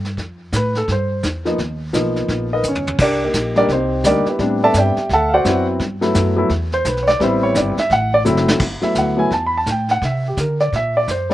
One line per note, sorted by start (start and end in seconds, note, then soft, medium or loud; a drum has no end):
0.00 0.16 G2 medium
0.05 snare soft
0.17 0.52 F2 medium
0.17 brush sweep soft
0.17 kick soft
0.17 snare soft
0.52 0.87 A2 medium
0.52 0.76 B4 medium
0.52 kick soft
0.52 snare medium
0.52 hi-hat pedal medium
0.75 0.89 A4 medium
0.75 snare soft
0.88 1.22 G2 medium
0.88 brush sweep soft
0.88 kick soft
0.88 snare soft
0.92 1.23 C5 medium
1.23 1.57 E2 medium
1.23 kick soft
1.23 snare medium
1.23 hi-hat pedal soft
1.45 1.57 F3 medium
1.45 1.57 A#3 medium
1.45 1.58 B3 medium
1.45 1.58 D#4 medium
1.45 snare soft
1.58 1.93 D#2 medium
1.58 brush sweep medium
1.58 kick soft
1.58 snare soft
1.93 2.28 B1 medium
1.93 2.46 F3 medium
1.93 2.46 A#3 medium
1.93 2.47 B3 medium
1.93 2.47 D#4 medium
1.93 kick soft
1.93 snare medium
1.93 hi-hat pedal medium
2.16 snare soft
2.28 2.63 A#1 medium
2.28 brush sweep soft
2.28 kick soft
2.28 snare soft
2.53 2.65 D#4 medium
2.53 2.65 A#4 medium
2.53 2.65 B4 medium
2.53 2.65 D#5 medium
2.63 2.98 G1 medium
2.63 hi-hat pedal medium
2.68 2.99 C#4 medium
2.68 2.99 C#5 medium
2.75 floor tom medium
2.87 floor tom medium
2.98 3.33 C2 medium
2.98 3.22 D4 medium
2.98 3.22 G4 medium
2.98 3.22 A#4 medium
2.98 3.22 D5 medium
2.98 brush sweep soft
2.98 kick medium
2.98 snare soft
2.98 crash medium
3.24 3.55 A#3 soft
3.24 3.56 D#4 soft
3.24 3.56 G4 soft
3.24 3.55 A#4 medium
3.33 3.68 A#1 medium
3.33 kick soft
3.33 snare medium
3.33 hi-hat pedal medium
3.56 3.68 G3 medium
3.56 3.68 A#3 medium
3.56 3.68 D4 medium
3.56 3.69 D#4 medium
3.56 3.70 G4 medium
3.56 3.70 A#4 medium
3.56 3.70 D5 medium
3.56 snare soft
3.69 4.03 C2 medium
3.69 4.04 C5 medium
3.69 brush sweep soft
3.69 kick soft
3.69 snare soft
3.73 4.04 C4 medium
3.73 4.04 D#4 medium
4.04 4.25 D2 medium
4.04 4.24 G3 medium
4.04 4.25 A#3 medium
4.04 4.25 D4 medium
4.04 4.25 D#4 medium
4.04 4.27 G4 medium
4.04 4.27 A#4 medium
4.04 4.27 D5 medium
4.04 kick soft
4.04 snare medium
4.04 hi-hat pedal medium
4.26 4.38 B3 medium
4.26 4.60 E4 medium
4.26 4.60 G4 soft
4.26 4.60 B4 medium
4.26 muted upright bass stroke soft
4.26 snare soft
4.39 4.73 A2 medium
4.39 4.92 G3 medium
4.39 4.92 B3 medium
4.39 4.93 C4 medium
4.39 4.93 D4 medium
4.39 brush sweep medium
4.39 kick soft
4.39 snare soft
4.64 4.75 A4 medium
4.64 4.75 D5 medium
4.64 4.75 E5 medium
4.64 4.76 A5 loud
4.74 4.95 G2 medium
4.74 kick soft
4.74 snare medium
4.74 hi-hat pedal medium
4.78 5.09 G4 medium
4.78 5.09 D5 medium
4.78 5.10 E5 medium
4.78 5.09 G5 medium
4.97 muted upright bass stroke soft
4.97 snare soft
5.09 5.44 D2 medium
5.09 brush sweep soft
5.09 kick soft
5.09 snare soft
5.13 5.33 A4 medium
5.13 5.33 E5 medium
5.13 5.32 F#5 medium
5.13 5.33 A5 medium
5.29 5.31 F5 medium
5.34 5.66 F#4 medium
5.34 5.66 C5 medium
5.34 5.66 D5 medium
5.34 5.66 F#5 medium
5.45 5.79 F#2 medium
5.45 5.80 F#3 medium
5.45 5.80 B3 medium
5.45 5.80 C4 medium
5.45 5.81 E4 medium
5.45 kick soft
5.45 snare medium
5.45 hi-hat pedal medium
5.79 6.14 G2 medium
5.79 brush sweep soft
5.79 kick soft
5.79 snare soft
6.01 6.35 F#3 medium
6.01 6.35 A3 medium
6.01 6.35 B3 medium
6.01 6.35 E4 medium
6.01 snare soft
6.14 6.49 F#2 medium
6.14 kick soft
6.14 snare medium
6.14 hi-hat pedal medium
6.37 6.49 F#3 medium
6.37 6.49 A3 medium
6.37 6.49 B3 medium
6.37 6.49 E4 medium
6.49 6.84 E2 medium
6.49 brush sweep medium
6.49 kick soft
6.49 snare soft
6.72 6.86 C5 medium
6.72 snare soft
6.85 7.19 B1 medium
6.85 7.08 B4 medium
6.85 kick soft
6.85 snare medium
6.85 hi-hat pedal medium
6.97 snare soft
7.03 7.05 C#5 medium
7.07 7.20 D5 loud
7.07 snare soft
7.09 snare soft
7.19 7.54 A1 medium
7.19 7.73 G3 medium
7.19 7.74 B3 medium
7.19 7.74 C4 medium
7.19 7.74 E4 medium
7.19 7.21 B4 medium
7.19 brush sweep soft
7.19 kick soft
7.19 snare soft
7.23 7.43 C5 medium
7.43 7.56 C#5 medium
7.55 7.76 G1 medium
7.55 7.78 D5 medium
7.55 kick soft
7.55 snare medium
7.55 hi-hat pedal medium
7.77 7.91 E5 medium
7.77 muted upright bass stroke soft
7.77 snare soft
7.90 8.24 A1 medium
7.90 8.13 F#5 medium
7.90 brush sweep soft
7.90 kick soft
7.90 snare soft
8.14 8.22 D5 medium
8.25 8.59 F#1 medium
8.25 8.61 F#3 medium
8.25 8.61 A3 medium
8.25 8.61 C4 medium
8.25 8.61 E4 medium
8.25 snare soft
8.25 hi-hat pedal medium
8.37 snare medium
8.48 snare medium
8.59 8.81 G1 medium
8.59 brush sweep soft
8.59 kick medium
8.59 snare soft
8.59 crash medium
8.82 9.15 F#3 medium
8.82 9.16 A3 medium
8.82 9.16 B3 medium
8.82 9.16 E4 medium
8.82 8.96 E5 medium
8.82 muted upright bass stroke soft
8.82 snare soft
8.95 9.30 D2 medium
8.95 9.19 F#5 medium
8.95 kick soft
8.95 snare medium
8.95 hi-hat pedal medium
9.17 9.29 F#3 medium
9.17 9.29 A3 medium
9.17 9.30 B3 medium
9.17 9.30 E4 medium
9.17 9.31 G#5 medium
9.31 9.65 E2 medium
9.31 9.44 A5 medium
9.31 brush sweep soft
9.31 kick soft
9.31 snare soft
9.46 9.56 B5 medium
9.57 9.68 A5 medium
9.66 10.01 A2 medium
9.66 kick soft
9.66 snare medium
9.66 hi-hat pedal soft
9.71 9.90 G5 medium
9.88 10.03 F#5 medium
9.88 snare soft
10.02 10.36 C3 medium
10.02 10.25 E5 medium
10.02 brush sweep soft
10.02 kick soft
10.02 snare soft
10.28 10.39 G4 medium
10.37 10.71 D3 medium
10.37 10.60 A#4 medium
10.37 kick soft
10.37 snare medium
10.37 hi-hat pedal medium
10.60 10.73 D5 medium
10.60 snare soft
10.72 11.06 A#2 medium
10.72 10.96 E5 medium
10.72 brush sweep soft
10.72 kick soft
10.72 snare soft
10.97 11.08 D5 medium
11.08 11.34 F#2 medium
11.08 11.31 C5 medium
11.08 kick soft
11.08 snare medium
11.08 hi-hat pedal soft
11.30 11.34 G3 medium
11.30 11.34 A3 medium
11.30 11.34 C4 medium
11.30 snare soft